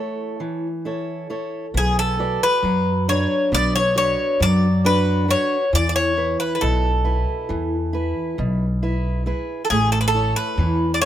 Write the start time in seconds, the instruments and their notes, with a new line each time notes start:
Already playing: steel-string acoustic guitar A3 E4 A4 C#5
0.40 steel-string acoustic guitar E3
0.85 steel-string acoustic guitar E4 A4 C#5
1.30 steel-string acoustic guitar E4 A4 C#5
1.74 upright bass B1, steel-string acoustic guitar B3, bouzouki G#4
1.99 bouzouki A4
2.19 steel-string acoustic guitar F#4 B4 D5
2.43 bouzouki B4
2.63 upright bass F#2, steel-string acoustic guitar F#3
3.08 steel-string acoustic guitar D4 F#4 B4, bouzouki C#5
3.52 upright bass B1, steel-string acoustic guitar B3, bouzouki D5
3.76 bouzouki C#5
3.96 steel-string acoustic guitar D4 F#4 B4, bouzouki C#5
4.40 upright bass F#2, steel-string acoustic guitar F#3, bouzouki D5
4.85 steel-string acoustic guitar D4 F#4 B4, bouzouki B4
5.28 steel-string acoustic guitar F#4 B4 F#5, bouzouki C#5
5.73 upright bass E2, steel-string acoustic guitar E3, bouzouki D5
5.89 bouzouki D5
5.96 bouzouki C#5
6.17 steel-string acoustic guitar E4 B4
6.40 bouzouki B4
6.55 bouzouki B4
6.61 upright bass B1, steel-string acoustic guitar B2, bouzouki A4
7.04 steel-string acoustic guitar E4 B4
7.49 upright bass E2, steel-string acoustic guitar E3
7.93 steel-string acoustic guitar E4 B4
8.38 upright bass B1, steel-string acoustic guitar B2
8.83 steel-string acoustic guitar E4 B4
9.26 steel-string acoustic guitar E4 G#4 B4
9.65 bouzouki A4
9.70 upright bass A1, steel-string acoustic guitar A3, bouzouki G#4
9.92 bouzouki A4
10.01 bouzouki B4
10.08 bouzouki A4
10.14 steel-string acoustic guitar E4 A4 C#5
10.36 bouzouki B4
10.58 upright bass E2, steel-string acoustic guitar E3
10.94 bouzouki D5
11.01 steel-string acoustic guitar E4, bouzouki C#5